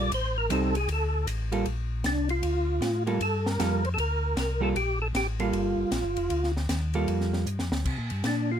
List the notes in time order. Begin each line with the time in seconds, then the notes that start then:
Already playing: A#1
0.00 D5
0.12 A1 C5, ride
0.38 A#4
0.50 C2 G3 C4 D#4 A4, hi-hat pedal, ride
0.75 G#4, ride
0.89 D2 A4, ride
1.27 A1, hi-hat pedal, ride
1.52 G3 A#3 F4 A4, ride
1.66 A#1, ride
2.04 C2 D4, snare, hi-hat pedal, ride
2.29 F4, ride
2.43 D2, ride
2.81 A2, snare, hi-hat pedal, ride
3.06 G3 A#3 F4 A4, ride
3.20 G2 A4, ride
3.46 A#4, snare
3.59 F2 G3 A#3 F4 A4, snare, hi-hat pedal, ride
3.85 C5, ride
3.94 D2 A4
3.98 A#4, ride
4.36 C2 A#4, snare, hi-hat pedal, ride
4.61 G3 A#3 F4 A4
4.75 A#1 G4, ride
5.02 A4
5.14 A1 G4, snare, hi-hat pedal, ride
5.39 G3 A#3 F4 A4, ride
5.53 G1, ride
5.77 G1
5.91 A#1, snare, hi-hat pedal, ride
6.04 G1
6.17 F1, ride
6.30 D2, ride
6.44 snare
6.57 snare
6.69 D#2, snare, hi-hat pedal, ride
6.94 G3 A#3 F4 A4, ride
7.08 F2, ride
7.21 snare
7.33 snare
7.46 G2, hi-hat pedal
7.59 F2, snare
7.72 D2, snare
7.85 C3, kick, crash
7.98 A#2
8.10 G2, ride
8.24 A#2 D4, snare, hi-hat pedal, ride
8.52 F4